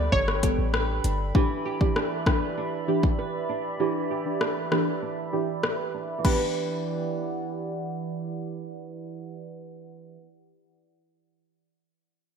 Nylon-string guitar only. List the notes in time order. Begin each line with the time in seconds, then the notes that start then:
Already playing: G3 D4 G4 B4
0.12 D4
0.43 G4
0.74 B4
1.04 D4
1.35 E3
1.65 G4
1.96 D4
2.27 B4
2.57 D4
2.88 G4
3.19 B4
3.49 D4
3.80 E3
4.11 G4
4.41 D4
4.72 B4
5.02 D4
5.33 G4
5.63 B4
5.94 D4
6.18 E3
6.25 B3
6.30 D4
6.34 G4
6.39 B4